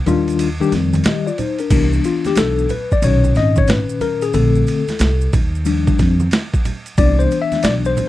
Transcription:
0.06 D#2 D#3 G3 D4 F4, ride, low conga, maracas
0.28 ride, maracas
0.39 ride, maracas
0.60 D#3 G3 D4 G4, maracas
0.72 F2, snare, ride, maracas
0.93 ride, high conga, maracas
1.04 G4 D#5, snare, hi-hat pedal, ride, high conga, low conga, maracas
1.27 F4 D5, maracas
1.38 D#4 C5, ride, low conga, maracas
1.59 D4 A#4, ride, maracas
1.70 C2 E3 B3 D4, kick, crash, ride, maracas
1.93 maracas
2.04 F4, ride, maracas
2.25 G4, snare, ride, high conga, maracas
2.35 B1 A4, snare, hi-hat pedal, ride, maracas
2.59 maracas
2.69 B4, ride, low conga, maracas
2.92 D5, kick, maracas
3.02 B1 A#2 D#3 C#4 C#5, ride, maracas
3.24 high conga, maracas
3.35 G#1 D#5, snare, ride, maracas
3.56 C#5, kick, high conga, maracas
3.67 B4, snare, hi-hat pedal, ride, high conga, maracas
3.89 maracas
4.01 A#4, ride, low conga, maracas
4.22 G#4, ride, maracas
4.33 A#1 D3 A3 C4 A4, ride, maracas
4.55 maracas
4.67 ride, maracas
4.88 snare, ride, high conga, maracas
4.99 C2, snare, hi-hat pedal, ride, maracas
5.21 maracas
5.33 D#2, kick, ride, low conga, maracas
5.55 maracas
5.65 F3 G3 D4, ride, maracas
5.87 kick, high conga, maracas
5.99 F2, kick, snare, ride, maracas
6.20 high conga, maracas
6.31 snare, hi-hat pedal, ride, high conga, maracas
6.54 kick, maracas
6.65 ride, low conga, maracas
6.86 ride, maracas
6.98 C2 E3 B3 D4 D5, kick, ride, maracas
7.19 C5, maracas
7.31 ride, maracas
7.42 E5
7.52 snare, ride, high conga, maracas
7.63 B1 D5, snare, hi-hat pedal, ride, maracas
7.85 C5, maracas
7.97 ride, low conga, maracas

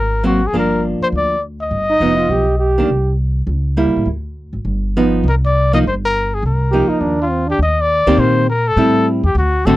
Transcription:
Already playing: G#1 A#4
0.24 F#3 A#3 C4 F#4
0.47 G#4
0.53 G1 F3 A#3 D4
0.59 A#4
1.01 C5, muted upright bass stroke
1.12 D2
1.17 D5
1.62 D#5
1.71 G1
1.90 D#4
2.00 F1 F3 B3 D#4
2.18 F4
2.29 B1 G4
2.59 G4
2.78 D#3 A#3 D4
2.88 C2
3.47 C#2
3.77 G3 A#3 E4
3.87 G2
3.96 A2
4.06 D2
4.53 G#1
4.65 G1
4.97 F3 B3 D#4
5.24 C2
5.28 A#4
5.45 D5
5.73 F3 A#3 D#4 D#5
5.83 G1
5.87 C5
6.05 A#4
6.34 G#4
6.43 C2 A#4
6.72 F3 A#3 D#4 G4
6.89 D#4, muted upright bass stroke
7.00 D#2 D4
7.22 F4
7.30 C4
7.47 D4 G4
7.59 D#2 D#5
7.81 D5
8.07 D2 D#3 A#3 C4 G4
8.18 A#2 C5
8.49 A#4
8.67 A4
8.76 A2 G3 C4 E4
9.23 E2 G4
9.35 D2 F#4
9.65 G#1 D3 A3 C4 F#4 A4

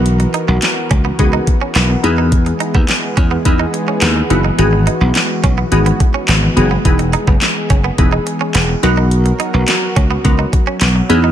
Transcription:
Already playing: B1 E3 B3 D#4 F#4 A#4
0.06 closed hi-hat
0.20 muted clean electric guitar stroke, closed hi-hat
0.34 D#4, closed hi-hat
0.48 B1 B3
0.62 muted clean electric guitar stroke, snare, clap, closed hi-hat
0.91 C#2 C#4, kick, closed hi-hat
1.05 B3
1.19 C#2 B3 D#4 F#4 G#4, kick, closed hi-hat
1.33 D#4
1.47 muted clean electric guitar stroke, kick, closed hi-hat
1.61 C#4
1.75 B1 B3, snare, clap, closed hi-hat
1.90 muted clean electric guitar stroke
2.04 E2 G#3 B3 D#4 E4 G#4, closed hi-hat
2.18 D#4
2.32 kick, closed hi-hat
2.46 muted clean electric guitar stroke, closed hi-hat
2.60 D#4, closed hi-hat
2.75 D#2 B3, kick
2.89 muted clean electric guitar stroke, snare, clap, closed hi-hat
3.17 E2 C#4, kick, closed hi-hat
3.31 B3
3.45 E2 B3 D#4 E4 G#4, kick, closed hi-hat
3.59 D#4
3.74 muted clean electric guitar stroke, closed hi-hat
3.88 C#4
4.02 D#2 B3, snare, clap, closed hi-hat
4.16 muted clean electric guitar stroke
4.30 F#1 B3 D#4 E4 F#4, closed hi-hat
4.45 D#4
4.58 G#1 G#3 B3 D#4 F#4 G#4, closed hi-hat
4.73 muted clean electric guitar stroke
4.87 D#4, closed hi-hat
5.01 B1 B3
5.15 muted clean electric guitar stroke, snare, clap, closed hi-hat
5.44 B1 C#4, kick, closed hi-hat
5.58 B3
5.72 G#1 B3 D#4 F#4 G#4, closed hi-hat
5.86 B3, closed hi-hat
6.00 muted clean electric guitar stroke, kick, closed hi-hat
6.14 C#4
6.28 G#1 B3, snare, clap, closed hi-hat
6.43 muted clean electric guitar stroke
6.57 F#1 B3 D#4 F#4 G#4, closed hi-hat
6.71 B3
6.85 E1 B3 D#4 E4 G#4, kick, closed hi-hat
6.99 muted clean electric guitar stroke, closed hi-hat
7.13 D#4, closed hi-hat
7.27 F#1 B3, kick
7.42 muted clean electric guitar stroke, snare, clap, closed hi-hat
7.70 F#1 C#4, kick, closed hi-hat
7.84 B3
7.98 E1 B3 D#4 E4 G#4, kick, closed hi-hat
8.12 D#4
8.27 muted clean electric guitar stroke, closed hi-hat
8.41 C#4
8.55 E1 B3, snare, clap, closed hi-hat
8.69 muted clean electric guitar stroke
8.83 B1 F#3 B3 D#4 F#4 A#4, closed hi-hat
8.97 D#4
9.11 closed hi-hat
9.26 muted clean electric guitar stroke, closed hi-hat
9.40 D#4, closed hi-hat
9.54 B1 B3
9.68 muted clean electric guitar stroke, snare, clap, closed hi-hat
9.96 C#2 C#4, kick, closed hi-hat
10.11 B3
10.24 C#2 B3 D#4 F#4 A#4, kick, closed hi-hat
10.39 D#4
10.53 muted clean electric guitar stroke, kick, closed hi-hat
10.67 C#4
10.81 B1 B3, snare, clap, closed hi-hat
10.96 muted clean electric guitar stroke
11.09 E2 E3 G#3 B3 D#4 E4 G#4, closed hi-hat
11.24 D#4

